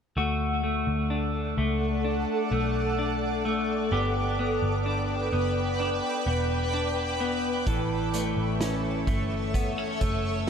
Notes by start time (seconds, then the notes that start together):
0.17 D2 A3 F#4 A4 D5 F#5 D6
0.64 A3
0.87 D2
1.10 D4
1.57 C#2 A3
2.04 D4
2.51 B1 A3
2.99 D4
3.45 A3
3.92 G1 B3 G4 B4 G5
4.39 B3
4.62 G1
4.86 D4
5.32 F#1 B3
5.80 D4
6.26 E1 B3
6.73 D4
7.20 B3
7.67 A1 E3 A4 C#5 E5 C#6, kick, closed hi-hat
8.14 A3, closed hi-hat
8.37 A1
8.61 C#4, snare, closed hi-hat
9.07 G1 A3, kick, closed hi-hat
9.54 B3, kick, closed hi-hat
9.78 C#4
10.01 F#1 A3, kick, closed hi-hat